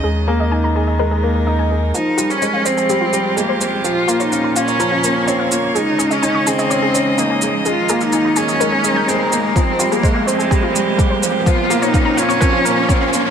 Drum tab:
SH |----------------|x-xxx-xxx-x-x-x-|x-xxx-xxx-x-x-x-|x-xxx-xxx-x-x-x-|
BD |----------------|----------------|----------------|----------------|

SH |x-xxx-xxx-x-x-x-|x-xxx-xxx-x-x-x-|x-xxx-xxx-x-x-x-|
BD |----------------|o---o---o---o---|o---o---o---o---|